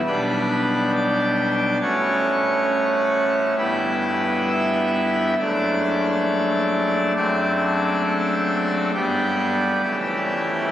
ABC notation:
X:1
M:4/4
L:1/8
Q:1/4=67
K:D
V:1 name="Pipe organ"
B2 d2 c4 | B2 e2 d4 | d2 A2 G4 |]
V:2 name="Pipe organ" clef=bass
[B,,,B,,G,DG]4 [A,,,A,,A,CF]4 | [G,,,G,,B,EG]4 [F,,,F,,A,D]4 | [F,,,F,,A,=CD]4 [G,,,G,,G,B,D]2 [^C,,,C,,E,A,E]2 |]